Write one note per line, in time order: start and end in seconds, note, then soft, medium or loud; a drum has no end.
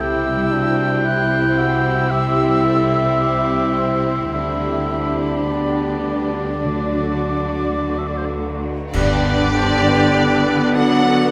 0.00 4.30 C2 medium
0.00 2.10 C3 soft
0.00 4.31 C3 soft
0.00 2.05 G3 medium
0.00 5.50 C4 medium
0.00 0.68 E4 soft
0.00 2.06 E4 medium
0.00 0.53 E4 medium
0.00 5.47 E4 soft
0.00 1.03 G4 soft
0.00 4.30 G4 soft
0.00 0.55 G4 medium
0.00 2.12 G5 medium
0.00 1.04 E6 medium
0.36 2.46 G3 soft
0.51 1.05 D4 medium
0.51 1.07 F#4 medium
0.70 2.82 E4 soft
1.04 1.57 E4 soft
1.04 2.13 E4 medium
1.04 1.73 G4 soft
1.04 1.60 F#6 medium
1.40 3.57 C5 soft
1.58 2.13 F#4 medium
1.58 3.23 E6 medium
1.74 3.19 G4 soft
2.10 4.39 C3 soft
2.10 4.30 G3 medium
2.10 4.30 E4 medium
2.10 2.67 G4 soft
2.10 2.67 G4 medium
2.10 4.32 E5 medium
2.47 6.37 G3 soft
2.65 4.07 E4 medium
2.65 3.21 A4 medium
2.83 4.39 E4 soft
3.20 4.07 G4 soft
3.20 3.94 G4 soft
3.20 3.80 D6 soft
3.58 4.39 C5 soft
3.78 4.15 C6 soft
3.95 5.48 G4 soft
4.33 8.69 D2 soft
4.33 8.69 D3 soft
4.33 6.64 D3 soft
4.33 5.47 G3 soft
4.33 5.47 D4 soft
4.33 8.30 D4 soft
4.33 6.67 G4 soft
4.33 6.62 G4 soft
4.33 5.21 E5 medium
4.33 6.40 B5 medium
4.73 6.69 B3 soft
5.11 7.40 D4 soft
5.48 6.63 G3 soft
5.48 6.65 B3 soft
5.48 6.62 D4 soft
5.48 8.73 D4 soft
5.48 6.26 G4 soft
5.48 8.00 D5 soft
5.89 6.69 B4 soft
6.27 6.69 G4 soft
6.64 8.30 D3 medium
6.64 8.99 D3 soft
6.64 8.61 F#3 soft
6.64 8.70 A3 soft
6.64 8.57 D4 soft
6.64 8.73 F#4 soft
6.64 8.62 F#4 soft
6.64 8.61 D6 soft
7.03 8.99 A3 soft
7.41 9.34 D4 soft
7.78 8.53 F#4 soft
7.99 8.09 E5 soft
8.07 8.19 D5 soft
8.15 8.99 A4 soft
8.15 8.28 C5 soft
8.26 8.34 D5 soft
8.54 8.99 F#4 soft
8.93 9.96 G2 medium
8.93 11.31 G2 medium
8.93 10.71 D3 medium
8.93 11.31 D3 medium
8.93 9.22 G3 medium
8.93 11.31 B3 medium
8.93 9.55 D4 medium
8.93 11.31 D4 medium
8.93 10.77 D4 medium
8.93 10.77 G4 medium
8.93 9.59 B4 medium
8.93 10.70 D5 medium
8.93 concert bass drum medium
8.93 crash medium
9.24 9.55 B3 medium
9.35 10.16 D4 medium
9.56 9.86 D4 medium
9.56 10.18 C5 medium
9.75 10.43 E4 soft
9.87 10.16 B3 medium
10.17 10.46 G3 medium
10.17 10.94 D4 soft
10.17 10.75 B4 medium
10.47 10.76 B3 medium
10.55 11.31 D3 medium
10.75 11.31 F#3 medium
10.75 11.05 D4 medium
10.75 11.31 F#4 medium
10.75 11.31 A4 medium
10.75 11.31 D5 medium
10.75 11.31 F#5 medium
10.95 11.31 D4 medium
11.07 11.31 B3 medium